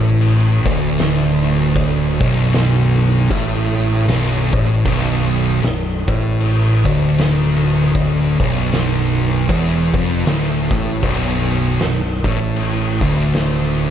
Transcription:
Already playing: picked electric bass A1, distorted electric guitar A2
0.21 crash
0.66 picked electric bass D1, distorted electric guitar D2, kick
0.99 snare, crash
1.76 kick, crash
2.20 picked electric bass B0, distorted electric guitar B1, kick
2.53 snare, crash
3.30 picked electric bass A1, distorted electric guitar A2, kick, crash
4.08 picked electric bass B0, distorted electric guitar B1, snare, crash
4.53 picked electric bass A1, distorted electric guitar A2, kick
4.85 picked electric bass B0, distorted electric guitar B1, kick, crash
5.63 picked electric bass B0, distorted electric guitar B1, snare, crash
6.08 picked electric bass A1, distorted electric guitar A2, kick
6.41 crash
6.85 picked electric bass D1, distorted electric guitar D2, kick
7.18 snare, crash
7.95 kick, crash
8.40 picked electric bass B0, distorted electric guitar B1, kick
8.72 snare, crash
9.49 picked electric bass E1, distorted electric guitar E2, kick, crash
9.94 picked electric bass F1, distorted electric guitar F2, kick
10.26 picked electric bass D1, distorted electric guitar D2, snare, crash
10.71 picked electric bass A1, distorted electric guitar A2, kick
11.03 picked electric bass B0, distorted electric guitar B1, kick, crash
11.79 picked electric bass B0, distorted electric guitar B1, snare, crash
12.24 picked electric bass A1, distorted electric guitar A2, kick
12.56 crash
13.01 picked electric bass D1, distorted electric guitar D2, kick
13.33 snare, crash

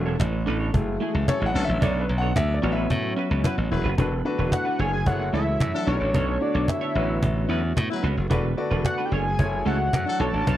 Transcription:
Already playing: slap bass E1, string machine D3 A3 B3 E4, grand piano A4
0.06 clean electric guitar D4 A4 C#5, cajon slap
0.19 slap bass A1, muted clean electric guitar stroke, cajon bass, cajon slap
0.33 muted clean electric guitar stroke, cajon slap
0.46 slap bass A1, clean electric guitar D4 A4 B4, cajon slap
0.60 clean electric guitar D4 A4 C#5, cajon slap
0.73 slap bass F#1, string machine E3 F#3 F#4 G#4, grand piano G#3 A3 E4, muted clean electric guitar stroke, cajon bass
0.87 muted clean electric guitar stroke, cajon slap
1.00 clean electric guitar A3 E4 G#4, cajon slap
1.14 slap bass C#2, muted clean electric guitar stroke, cajon slap
1.27 horn section E3 C#4 A4, grand piano C#5, muted clean electric guitar stroke, cajon bass, cajon slap
1.41 slap bass A1, clean electric guitar A3 E4 G#4
1.46 grand piano F#5
1.54 slap bass B1, grand piano D3 A3 C#4, string machine D3 B3 C#4, horn section F#3 D4 A4, muted clean electric guitar stroke
1.64 grand piano E5, muted clean electric guitar stroke
1.69 slap bass A1
1.81 slap bass B1, clean electric guitar D4 A4 C#5, grand piano D5, cajon bass
1.95 cajon slap
2.00 grand piano B4
2.08 slap bass B1, muted clean electric guitar stroke, cajon slap
2.18 clean electric guitar C#5, grand piano F#5
2.23 clean electric guitar D4 A4
2.35 slap bass D2, grand piano E5, muted clean electric guitar stroke, cajon bass, cajon slap
2.49 muted clean electric guitar stroke
2.54 grand piano D5
2.62 slap bass A1, grand piano F#3 B3 C#4, clean electric guitar C#4 F#4 C#5, string machine F#4, cajon slap
2.72 clean electric guitar B4, grand piano E5
2.77 clean electric guitar C#4 F#4, cajon slap
2.89 slap bass A2, muted clean electric guitar stroke, cajon bass
3.03 muted clean electric guitar stroke
3.16 clean electric guitar C#4 F#4 B4, cajon slap
3.30 slap bass C#2, clean electric guitar C#4 F#4 B4, cajon slap
3.44 horn section F#3 E4 B4, clean electric guitar C#4 F#4 B4, cajon bass, cajon slap
3.57 slap bass A1, muted clean electric guitar stroke
3.71 slap bass E1, horn section F#3 E4 B4, muted clean electric guitar stroke
3.84 slap bass F#1, clean electric guitar C#4 F#4 B4
3.98 slap bass E1, string machine D3 A3 B3 E4, clean electric guitar D4 A4 B4, grand piano D4 F#4 A4 B4, cajon bass
4.12 cajon slap
4.25 grand piano D4 F#4 A4 B4, cajon slap
4.38 slap bass E1, clean electric guitar D4 A4 B4, cajon slap
4.52 analog synth lead F#5, muted clean electric guitar stroke, cajon bass, cajon slap
4.65 clean electric guitar D4 A4 B4, cajon slap
4.79 slap bass F#1, clean electric guitar D4 A4 C#5, analog synth lead G#5, cajon slap
4.92 muted clean electric guitar stroke, cajon slap
5.06 slap bass F#1, string machine E3 F#3 A3 F#4, grand piano E4 G#4 A4 C#5, analog synth lead F#5, muted clean electric guitar stroke, cajon bass
5.19 muted clean electric guitar stroke
5.33 slap bass C#2, horn section E3 C#4 A4, clean electric guitar A3 E4 A4, analog synth lead E5, cajon slap
5.46 muted clean electric guitar stroke
5.60 slap bass F#2, muted clean electric guitar stroke, cajon bass, cajon slap
5.73 horn section F#3 D4 A4, muted clean electric guitar stroke
5.87 slap bass B1, string machine D3 B3 D4, clean electric guitar D4 A4 C#5, grand piano D4 F#4 A4 C#5, analog synth lead C#5
6.00 slap bass A1, clean electric guitar D4 A4 D5
6.14 slap bass B1, clean electric guitar D4 A4 C#5, cajon bass
6.41 grand piano D4 F#4 A4 C#5, analog synth lead D5, muted clean electric guitar stroke, cajon slap
6.54 slap bass B1, clean electric guitar D4 A4 C#5
6.68 analog synth lead E5, cajon bass, cajon slap
6.81 clean electric guitar D4 A4 C#5
6.95 slap bass A1, string machine A3 F#4, clean electric guitar C#4 F#4 B4, grand piano E4 F#4 B4 C#5, cajon slap
7.09 muted clean electric guitar stroke, cajon slap
7.22 slap bass A1, muted clean electric guitar stroke, cajon bass
7.36 muted clean electric guitar stroke
7.49 slap bass E2, horn section F#3 E4 B4, clean electric guitar C#4 F#4 B4, cajon slap
7.62 muted clean electric guitar stroke, cajon slap
7.76 slap bass A2, muted clean electric guitar stroke, cajon bass, cajon slap
7.89 horn section F#3 E4 B4, muted clean electric guitar stroke, cajon slap
8.03 slap bass C#2, clean electric guitar C#4 F#4 B4
8.17 slap bass F#1, muted clean electric guitar stroke, cajon slap
8.30 slap bass E1, string machine D3 E4, clean electric guitar D4 A4 B4, grand piano F#4 A4 B4 D5, cajon bass
8.57 grand piano F#4 A4 B4 D5, muted clean electric guitar stroke, cajon slap
8.71 slap bass E1, clean electric guitar D4 A4 B4, cajon slap
8.85 analog synth lead F#5, muted clean electric guitar stroke, cajon bass, cajon slap
8.98 clean electric guitar D4 A4 B4
9.05 analog synth lead G5
9.11 slap bass F#1, clean electric guitar D4 A4 C#5, analog synth lead G#5, cajon slap
9.25 muted clean electric guitar stroke, cajon slap
9.39 slap bass F#1, string machine E3 F#3 A3 F#4, grand piano E4 G#4 A4 C#5, muted clean electric guitar stroke, cajon bass
9.52 muted clean electric guitar stroke
9.65 slap bass C#2, horn section E3 C#4 A4, clean electric guitar A3 E4 A4, analog synth lead F#5
9.79 muted clean electric guitar stroke, cajon slap
9.93 slap bass F#2, muted clean electric guitar stroke, cajon bass, cajon slap
10.06 horn section F#3 D4 A4, muted clean electric guitar stroke
10.20 slap bass B1, string machine D3 B3 D4, grand piano D4 F#4 A4 C#5, clean electric guitar D4 A4 C#5, analog synth lead A5
10.33 slap bass A1, clean electric guitar D4 A4 D5
10.47 slap bass B1, clean electric guitar D4 A4 C#5, cajon bass

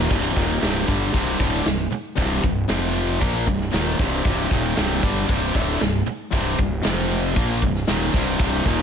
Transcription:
Already playing: distorted electric guitar D#2 A#2 D#3
0.10 fingered electric bass C1, distorted electric guitar C2 G2 C3, kick, crash
0.36 fingered electric bass D#1, distorted electric guitar D#2 A#2 D#3, kick, open hi-hat
0.62 fingered electric bass C1, distorted electric guitar C2 G2 C3, snare, open hi-hat
0.87 fingered electric bass G1, distorted electric guitar G2 D3 G3, kick, open hi-hat
1.13 fingered electric bass C1, distorted electric guitar C2 G2 C3, kick, open hi-hat
1.38 fingered electric bass D1, distorted electric guitar D2 A2 D3, kick, open hi-hat
1.54 snare
1.64 fingered electric bass C1, distorted electric guitar C2 G2, snare, open hi-hat
1.91 muted distorted electric guitar stroke, muted fingered electric bass stroke, open hi-hat
2.16 fingered electric bass C1, distorted electric guitar C2 G2 C3, kick, open hi-hat
2.43 fingered electric bass C1, distorted electric guitar C2 G2, kick, open hi-hat
2.68 fingered electric bass F1, distorted electric guitar F2 C3 F3, snare, open hi-hat
2.96 open hi-hat
3.20 fingered electric bass A#1, distorted electric guitar A#2 F3 A#3, kick, open hi-hat
3.46 fingered electric bass C1, distorted electric guitar C2 G2, kick, open hi-hat
3.61 snare
3.72 fingered electric bass D#1, distorted electric guitar D#2 A#2 D#3, snare, open hi-hat
3.99 fingered electric bass C1, distorted electric guitar C2 G2 C3, kick, open hi-hat
4.24 fingered electric bass C1, distorted electric guitar C2 G2 C3, kick, open hi-hat
4.50 fingered electric bass D#1, distorted electric guitar D#2 A#2 D#3, kick, open hi-hat
4.76 fingered electric bass C1, distorted electric guitar C2 G2 C3, snare, open hi-hat
5.02 fingered electric bass G1, distorted electric guitar G2 D3 G3, kick, open hi-hat
5.28 fingered electric bass C1, distorted electric guitar C2 G2 C3, kick, open hi-hat
5.54 fingered electric bass D1, distorted electric guitar D2 A2 D3, kick, open hi-hat
5.80 fingered electric bass C1, distorted electric guitar C2 G2, snare, open hi-hat
6.06 muted fingered electric bass stroke, muted distorted electric guitar stroke, open hi-hat
6.31 fingered electric bass C1, distorted electric guitar C2 G2 C3, kick, open hi-hat
6.58 fingered electric bass C1, distorted electric guitar C2 G2, kick, open hi-hat
6.82 fingered electric bass F1, distorted electric guitar F2 C3 F3, snare, open hi-hat
7.10 open hi-hat
7.35 fingered electric bass A#1, distorted electric guitar A#2 F3 A#3, kick, open hi-hat
7.62 fingered electric bass C1, distorted electric guitar C2 G2, kick, open hi-hat
7.75 snare
7.87 fingered electric bass D#1, distorted electric guitar D#2 A#2 D#3, snare, open hi-hat
8.13 fingered electric bass C1, distorted electric guitar C2 G2 C3, kick, open hi-hat
8.39 fingered electric bass C1, distorted electric guitar C2 G2 C3, kick, open hi-hat
8.65 fingered electric bass D#1, distorted electric guitar D#2 A#2 D#3, kick, open hi-hat

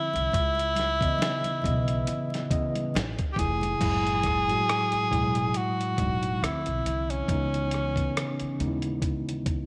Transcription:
Already playing: tine electric piano D3 F3 C4 E4, tenor saxophone E4
0.13 upright bass C2, closed hi-hat, high conga
0.32 upright bass C#2, kick, closed hi-hat, muted conga
0.55 muted conga
0.59 closed hi-hat
0.76 snare, closed hi-hat, high conga
1.00 tine electric piano C#3 E3 B3 D#5, kick, closed hi-hat
1.19 snare, closed hi-hat, muted conga, high conga
1.44 closed hi-hat, muted conga, high conga
1.62 upright bass B1, tine electric piano C#3 E3 B3, kick, closed hi-hat, low conga
1.66 tine electric piano D#5
1.88 closed hi-hat
2.07 closed hi-hat, muted conga, low conga
2.30 closed hi-hat, muted conga
2.35 snare
2.50 tine electric piano C#3 E3 B3 D#5, kick, closed hi-hat
2.75 closed hi-hat, high conga
2.94 upright bass A1, snare, closed hi-hat, muted conga
3.18 kick, closed hi-hat, muted conga
3.33 tine electric piano C3, tenor saxophone G4, kick
3.37 upright bass F1, tine electric piano E3 A3 E4, tenor saxophone G#4, closed hi-hat, low conga
3.61 closed hi-hat, high conga
3.79 upright bass F#1, tine electric piano A2 F#3 G#3 E4, kick, closed hi-hat, crash
4.07 closed hi-hat
4.23 kick, cross-stick, closed hi-hat
4.48 tine electric piano A2 F#3 G#3 F#4, closed hi-hat
4.69 cross-stick, closed hi-hat
4.92 muted upright bass stroke, closed hi-hat
5.10 upright bass E1, tine electric piano A2 F#3 G#3 E4, kick, closed hi-hat
5.35 closed hi-hat
5.54 tenor saxophone F#4, closed hi-hat
5.81 closed hi-hat
5.97 upright bass E1, tine electric piano A2 F#3 G#3 D#4, kick, closed hi-hat
6.23 closed hi-hat
6.41 upright bass D2, tine electric piano D3 F3 C4 E4, tenor saxophone E4, cross-stick, closed hi-hat
6.66 upright bass B1, closed hi-hat
6.86 upright bass C2, closed hi-hat
7.10 tenor saxophone C#4, closed hi-hat
7.28 upright bass C#2, tine electric piano C#3 E3 B3 D#4, kick, closed hi-hat
7.54 closed hi-hat
7.71 cross-stick, closed hi-hat
7.96 tine electric piano C#3 E3 B3 C#4, kick, closed hi-hat
8.17 cross-stick, closed hi-hat
8.40 muted upright bass stroke, closed hi-hat
8.58 upright bass D#2, tine electric piano C#3 G#3 B3 D#4, closed hi-hat
8.68 tine electric piano E4
8.82 closed hi-hat
9.02 kick, closed hi-hat
9.29 closed hi-hat
9.46 kick, closed hi-hat

